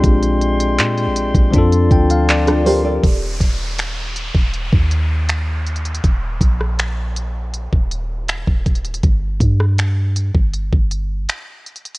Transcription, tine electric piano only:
\new Staff \with { instrumentName = "Tine electric piano" } { \time 4/4 \key ees \lydian \tempo 4 = 80 << { r2 r8 g''16 f''16 d''8 bes'8 | r1 | r1 | r1 | } \\ { <aes c' d' f' g'>2 <f c' d' f' a'>2 | r1 | r1 | r1 | } >> }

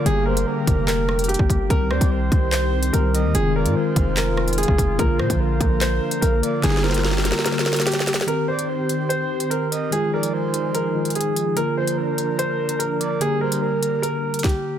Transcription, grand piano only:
\new Staff \with { instrumentName = "Grand piano" } { \time 4/4 \key c \minor \tempo 4 = 146 aes'8 bes'4. bes'4 g'4 | bes'8 c''4. c''4 bes'4 | aes'8 bes'4. bes'4 aes'4 | bes'8 c''4. c''4 bes'4 |
aes'8 bes'4. bes'4 g'4 | bes'8 c''4. c''4 bes'4 | aes'8 bes'4. bes'4 aes'4 | bes'8 c''4. c''4 bes'4 |
aes'8 bes'4. bes'4 g'4 | }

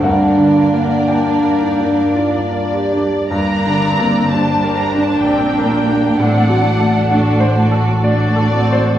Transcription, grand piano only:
\new Staff \with { instrumentName = "Grand piano" } { \time 3/4 \key g \minor \tempo 4 = 61 << { <bes' fis''>4 <bes' g''>4 r4 | r2. | r2. | } \\ { \tuplet 3/2 { g,8 d8 bes8 d'8 bes'8 d'8 d''8 bes'8 d'8 } | \tuplet 3/2 { g,8 d8 bes8 d'8 bes'8 d'8 d''8 bes'8 d'8 } | \tuplet 3/2 { a,8 fis8 a8 d'8 c''8 a'8 d''8 a'8 c''8 } | } >> }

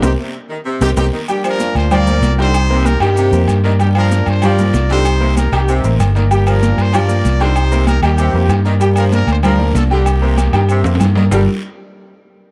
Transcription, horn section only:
\new Staff \with { instrumentName = "Horn section" } { \time 4/4 \key c \dorian \tempo 4 = 191 << { <c' ees' g'>8 r2 <c' ees' g'>8 <c' ees' g'>8 r8 | g'8 bes'4 c''8 d''4. c''8~ | c''4 bes'8 g'2 r8 | g'8 bes'4 c''8 d''4. c''8~ |
c''4 bes'8 g'4 r4. | g'8 bes'4 c''8 d''4. c''8~ | c''4 bes'8 g'2 r8 | g'8 bes'8 bes'8 c''8 bes'4 a'8 g'8~ |
g'2. r4 | r1 | } \\ { r1 | <bes d'>8 <d' f'>4. <f' bes'>4. <ees' g'>8~ | <ees' g'>4. <bes ees'>2 r8 | <bes d'>8 <d' f'>4. <f' bes'>4. <ees' g'>8~ |
<ees' g'>4. <bes ees'>2 r8 | <bes d'>8 <d' f'>4. <f' bes'>4. <ees' g'>8~ | <ees' g'>4. <bes ees'>2 r8 | <bes d'>2 <d' f'>4. <bes ees'>8~ |
<bes ees'>2. r4 | r1 | } >> }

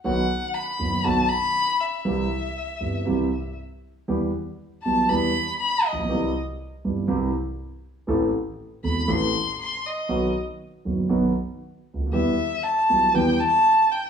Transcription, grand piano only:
\new Staff \with { instrumentName = "Grand piano" } { \clef bass \time 4/4 \key e \minor \tempo 4 = 119 <b,, b, dis fis b fis'>8 r4 <fis,, fis, dis fis b fis'>8 <b,, b, dis fis b fis'>8 r4. | <c, c e g c' g'>8 r4 <g,, g, e g c' g'>8 <c, c e g c' g'>8 r4. | <e, e g b g'>8 r4 <b,, b, e g b g'>8 <e, e g b g'>8 r4 r32 a,,32 ais,,32 b,,32 | <c, c e g c' g'>8 r4 <g,, g, e g c' g'>8 <c, c e g c' g'>8 r4. |
<a,, a, e a c' a'>8 r4 <e,, e, e a c' a'>8 <a,, a, e a c' a'>8 r4. | <b,, b, dis fis b fis'>8 r4 <fis,, fis, dis fis b fis'>8 <b,, b, dis fis b fis'>8 r4 r32 cis,32 d,32 dis,32 | <e, e g b g'>8 r4 <b,, b, e g b g'>8 <e, e g b g'>8 r4. | }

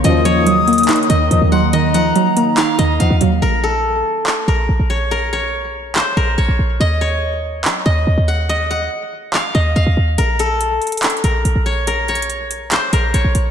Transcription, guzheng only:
\new Staff \with { instrumentName = "Guzheng" } { \time 4/4 \key bes \minor \tempo 4 = 142 ees''8 des''4. r8 ees''4 ges''8 | ees''8 ges''4. f''8 ees''8 f''4 | bes'8 a'4. r8 bes'4 des''8 | bes'8 des''4. c''8 bes'8 des''4 |
ees''8 des''4. r8 ees''4 ges''8 | ees''8 ges''4. f''8 ees''8 f''4 | bes'8 a'4. r8 bes'4 des''8 | bes'8 des''4. c''8 bes'8 des''4 | }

